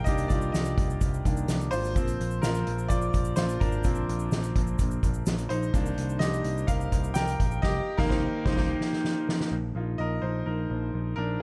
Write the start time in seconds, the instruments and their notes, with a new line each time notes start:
Already playing: upright piano D#3 A#3 D4 G4 A#4 D#5 F5 G5
0.04 picked electric bass C2, upright piano D#3 A#3 D4 G4 D#5, kick, closed hi-hat, shaker
0.18 closed hi-hat, shaker
0.28 picked electric bass C2, upright piano F4 D5, kick, closed hi-hat, shaker
0.41 shaker
0.52 picked electric bass C2, upright piano G4 D#5, snare, closed hi-hat, shaker
0.65 shaker
0.78 picked electric bass C2, kick, closed hi-hat
0.90 shaker
1.01 picked electric bass C2, kick, closed hi-hat, shaker
1.14 shaker
1.25 picked electric bass C2, upright piano D#3 A#3 D4, kick, closed hi-hat, shaker
1.37 shaker
1.48 picked electric bass C2, snare, closed hi-hat, shaker
1.61 shaker
1.71 picked electric bass G#1, upright piano F4 C5, open hi-hat, shaker
1.85 shaker
1.95 picked electric bass A#1, upright piano F3 A#3 C4, kick, closed hi-hat, shaker
2.07 closed hi-hat, shaker
2.20 picked electric bass A#1, closed hi-hat
2.31 shaker
2.42 picked electric bass A#1, upright piano F4 A#4, snare, closed hi-hat, shaker
2.54 shaker
2.67 picked electric bass A#1, closed hi-hat
2.79 shaker
2.88 picked electric bass A#1, upright piano F4 D5, kick, closed hi-hat, shaker
3.02 shaker
3.13 picked electric bass A#1, kick, closed hi-hat, shaker
3.24 shaker
3.36 picked electric bass A#1, upright piano F4 C5, snare, closed hi-hat, shaker
3.49 shaker
3.60 picked electric bass G#1, upright piano D4 A#4, kick, closed hi-hat
3.72 shaker
3.84 picked electric bass A#1, upright piano F3 A#3 C4, kick, closed hi-hat, shaker
3.95 shaker
4.09 picked electric bass A#1, closed hi-hat
4.19 shaker
4.32 picked electric bass A#1, snare, closed hi-hat, shaker
4.43 shaker
4.56 picked electric bass A#1, kick, closed hi-hat
4.67 shaker
4.79 picked electric bass A#1, kick, closed hi-hat, shaker
4.91 shaker
5.03 picked electric bass A#1, kick, closed hi-hat, shaker
5.14 shaker
5.26 picked electric bass A#1, snare, closed hi-hat, shaker
5.38 closed hi-hat, shaker
5.49 picked electric bass A#1, upright piano D#4 C5, closed hi-hat
5.63 shaker
5.73 picked electric bass C2, upright piano D#3 A#3 D4, kick, closed hi-hat, shaker
5.86 shaker
5.97 picked electric bass C2, closed hi-hat
6.09 shaker
6.19 picked electric bass C2, upright piano G4 D#5, snare, closed hi-hat, shaker
6.34 shaker
6.44 picked electric bass C2, closed hi-hat
6.58 shaker
6.67 picked electric bass C2, upright piano A#4 F5, kick, closed hi-hat, shaker
6.81 shaker
6.92 picked electric bass C2, kick, closed hi-hat, shaker
7.04 shaker
7.14 picked electric bass C2, upright piano A#4 G5, snare, closed hi-hat, shaker
7.27 closed hi-hat, shaker
7.40 picked electric bass A#1, kick, closed hi-hat
7.51 shaker
7.62 picked electric bass C2, upright piano G4 D#5, kick, snare, crash
7.97 picked electric bass C2, upright piano D#3 A#3 A#4, kick, snare
8.09 picked electric bass C2, upright piano D#4 C5, kick, snare
8.46 picked electric bass C2, upright piano D#4 C5, kick, snare
8.56 picked electric bass C2, upright piano D#4 C5, kick, snare, crash
8.81 snare
8.93 snare
9.04 snare
9.29 snare
9.41 snare
9.52 picked electric bass A#1
9.75 picked electric bass A#1, upright piano A#3 D#4 F4
9.98 picked electric bass A#1, upright piano A#4 D#5
10.22 picked electric bass A#1, upright piano D#4 C5
10.46 picked electric bass A#1, upright piano D#4 A#4
10.70 picked electric bass A#1
10.94 picked electric bass A#1
11.16 picked electric bass A#1, upright piano D4 A#4